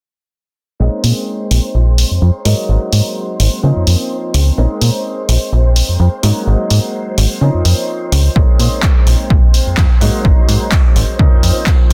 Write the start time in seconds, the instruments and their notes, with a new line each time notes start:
0.80 fm bass A#1, grand piano G#3 A#3 C4 C#4 D#4, string machine C5 C6
1.04 fm bass A#2, open hi-hat
1.51 fm bass A#1, open hi-hat
1.75 fm bass A#1
1.98 open hi-hat
2.11 fm bass F2
2.22 fm bass F2
2.45 fm bass G#2, grand piano F#3 G#3 A#3 C#4 D#4, open hi-hat
2.69 fm bass G#1
2.92 fm bass G#2, open hi-hat
3.40 fm bass G#1, open hi-hat
3.63 fm bass C#3, grand piano F3 A#3 C4 C#4 D#4
3.76 fm bass F2
3.87 fm bass F2, open hi-hat
4.34 fm bass C#2, open hi-hat
4.57 fm bass A#1, grand piano G#3 A#3 C4 C#4 D#4
4.81 fm bass A#2, open hi-hat
5.29 fm bass A#1, open hi-hat
5.52 fm bass A#1
5.76 open hi-hat
5.89 fm bass F2
6.00 fm bass F2
6.23 fm bass G#2, grand piano F#3 G#3 A#3 C#4 D#4, open hi-hat
6.47 fm bass G#1
6.70 fm bass G#2, open hi-hat
7.18 fm bass G#1, open hi-hat
7.41 fm bass C#3, grand piano F3 A#3 C4 C#4 D#4
7.54 fm bass F2
7.65 fm bass F2, open hi-hat
8.12 fm bass C#2, open hi-hat
8.35 fm bass A#1, grand piano G#3 A#3 C4 C#4 D#4, string machine C5 C6, kick
8.59 fm bass A#2, open hi-hat
8.83 kick, clap
9.07 fm bass A#1, open hi-hat
9.30 fm bass A#1, kick
9.54 open hi-hat
9.67 fm bass F2
9.77 fm bass F2, kick, clap
10.01 fm bass G#2, grand piano F#3 G#3 A#3 C#4 D#4, open hi-hat
10.25 fm bass G#1, kick
10.48 fm bass G#2, open hi-hat
10.72 kick, clap
10.96 fm bass G#1, open hi-hat
11.19 fm bass C#3, grand piano F3 A#3 C4 C#4 D#4, kick
11.32 fm bass F2
11.43 fm bass F2, open hi-hat
11.66 kick, clap